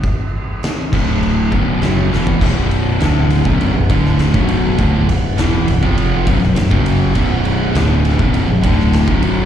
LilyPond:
<<
  \new Staff \with { instrumentName = "Distorted electric guitar" } { \clef bass \time 4/4 \key b \minor \tempo 4 = 101 r4. <d, a, d>4 <b,, fis, b,>8 <fis, cis fis>8 <e, b, e>8 | <b,, fis, b,>4 <d, a, d>8. <b,, fis, b,>8 <b,, fis,>16 <d, a, d>8. <b,, fis, b,>8. | <d, a, d>8 <b,, fis,>8 <e, b, e>8 <b,, fis,>16 <eis, c eis>8. <b,, fis,>16 <b,, fis,>16 <b,, fis,>16 <fis, cis fis>8. | <b,, fis, b,>4 <d, a, d>8. <b,, fis, b,>8 <b,, fis,>16 <d, a, d>8. <b,, fis, b,>8. | }
  \new Staff \with { instrumentName = "Distorted electric guitar" } { \clef bass \time 4/4 \key b \minor r4. <d, a, d>4 <b,, fis, b,>8 <fis, cis fis>8 <e, b, e>8 | <b,, fis, b,>4 <d, a, d>8. <b,, fis, b,>8 <b,, fis,>16 <d, a, d>8. <b,, fis, b,>8. | <d, a, d>8 <b,, fis,>8 <e, b, e>8 <b,, fis,>16 <eis, c eis>8. <b,, fis,>16 <b,, fis,>16 <b,, fis,>16 <fis, cis fis>8. | <b,, fis, b,>4 <d, a, d>8. <b,, fis, b,>8 <b,, fis,>16 <d, a, d>8. <b,, fis, b,>8. | }
  \new Staff \with { instrumentName = "Overdriven electric guitar" } { \clef bass \time 4/4 \key b \minor r4. <d, a, d>4 <b,, fis, b,>8 <fis, cis fis>8 <e, b, e>8 | <b,, fis, b,>4 <d, a, d>8. <b,, fis, b,>8 <b,, fis,>16 <d, a, d>8. <b,, fis, b,>8. | <d, a, d>8 <b,, fis,>8 <e, b, e>8 <b,, fis,>16 <eis, c eis>8. <b,, fis,>16 <b,, fis,>16 <b,, fis,>16 <fis, cis fis>8. | <b,, fis, b,>4 <d, a, d>8. <b,, fis, b,>8 <b,, fis,>16 <d, a, d>8. <b,, fis, b,>8. | }
  \new Staff \with { instrumentName = "Analog synth bass" } { \clef bass \time 4/4 \key b \minor r4. d,,4 b,,,8 fis,,8 e,,8 | b,,,4 d,,8. b,,,8 b,,,16 d,,8. b,,,8. | d,,8 b,,,8 e,,8 b,,,16 eis,,8. b,,,16 b,,,16 b,,,16 fis,,8. | b,,,4 d,,8. b,,,8 b,,,16 d,,8. b,,,8. | }
  \new DrumStaff \with { instrumentName = "Drums" } \drummode { \time 4/4 <cymc bd>4 <cymc sn>8 <cymc bd>8 cymc8 bd8 <cymc sn>8 sn16 tomfh16 | <cymc bd>8 cymr8 <cymr sn>8 cymr16 bd16 cymr8 <bd cymr>16 sn16 <cymr sn>16 bd16 cymr8 | <bd cymr>8 cymr8 <cymr sn>8 cymr16 bd16 cymr8 <bd cymr>16 sn16 <cymr sn>16 bd16 cymr8 | <bd cymr>8 cymr8 <cymr sn>8 cymr16 bd16 cymr8 <bd cymr>16 sn16 <cymr sn>16 bd16 cymr8 | }
>>